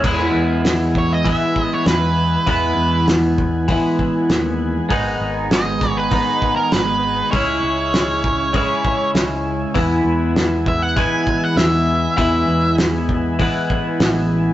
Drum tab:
CC |x-------|--------|--------|--------|
HH |--o-o-o-|o-o-o-o-|o-o-o-o-|o-o-o-o-|
SD |--o---o-|--o---o-|--oo--o-|--o---o-|
BD |o--ooo--|o--ooo--|o--ooo--|o--ooo--|

CC |--------|--------|
HH |o-o-o-o-|o-o-o-o-|
SD |--o---o-|--o---o-|
BD |o--ooo--|o--ooo--|